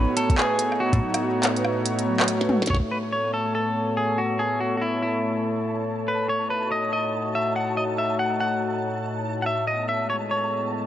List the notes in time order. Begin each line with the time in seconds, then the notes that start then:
Already playing: A2 A3 D#4 F#4 B4 C#5 G#5
0.09 F#4
0.16 B3 A4, closed hi-hat
0.30 kick, closed hi-hat
0.38 G#4 B4, clap
0.59 B3, closed hi-hat
0.72 cross-stick
0.80 B3 F#4
0.93 A2 F#3, kick, closed hi-hat
1.01 D#4
1.14 B3, cross-stick, closed hi-hat
1.22 F#4
1.35 B3
1.43 clap, closed hi-hat
1.56 B4, closed hi-hat
1.65 cross-stick
1.78 B3
1.86 closed hi-hat
1.99 B3, closed hi-hat
2.07 F#3
2.20 cross-stick, clap
2.28 F#4, closed hi-hat
2.41 B4, snare
2.49 F#4, mid tom
2.62 snare, closed hi-hat
2.67 C#5 A5, kick, snare
2.73 kick, snare
2.77 kick
2.80 kick
2.91 B4
3.04 B3
3.12 C#5
3.20 A4
3.34 A4
3.55 A4
3.97 G#4
4.18 F#4
4.39 G#4
4.60 F#4
4.77 F#4
4.82 E4
5.03 E4
6.08 A2 B4
6.29 C#5
6.38 D#4
6.50 F#4 B4
6.72 D#5
6.93 D#5
7.35 E5
7.56 F#5
7.77 D#5
7.98 E5
8.19 F#5
8.40 F#5
9.42 E5 F#5
9.67 B3 D#5
9.89 E5
9.97 G#3
10.10 C#5
10.31 C#5